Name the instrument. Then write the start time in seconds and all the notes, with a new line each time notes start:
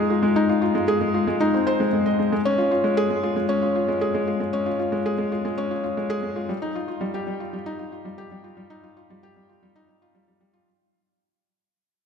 felt piano
Already playing: G#3 D#4 F4 G#4
0.10 F4
0.23 G#3
0.36 D#4
0.49 F4
0.62 F4
0.75 G#3
0.88 G#4
1.01 G#3
1.14 F4
1.27 G#3
1.40 D#4
1.54 C4
1.67 C5
1.80 G#3
1.93 G#3
2.06 D#5
2.19 G#3
2.32 G#3
2.45 C#4
2.58 F4
2.71 F4
2.84 G#3
2.97 G#4
3.10 G#3
3.23 F4
3.36 G#3
3.49 C#4
3.62 F4
3.75 F4
3.88 G#3
4.01 G#4
4.15 G#3
4.27 F4
4.40 G#3
4.53 C#4
4.66 F4
4.79 F4
4.92 G#3
5.06 G#4
5.18 G#3
5.32 F4
5.45 G#3
5.58 C#4
5.71 F4
5.84 F4
5.97 G#3
6.10 G#4
6.23 G#3
6.36 F4
6.49 G3
6.62 D#4
6.75 F4
6.88 F4
7.01 G3
7.14 G4
7.27 G3
7.40 F4
7.53 G3
7.66 D#4
7.79 F4
7.92 F4
8.05 G3
8.18 G4
8.31 G3
8.44 F4
8.57 G3
8.70 D#4
8.83 F4
8.97 F4
9.10 G3
9.23 G4
9.36 G3
9.49 F4
9.63 G3
9.76 D#4
9.89 D#4
10.02 F4
10.15 G3
10.28 G3
10.40 G3
10.53 F4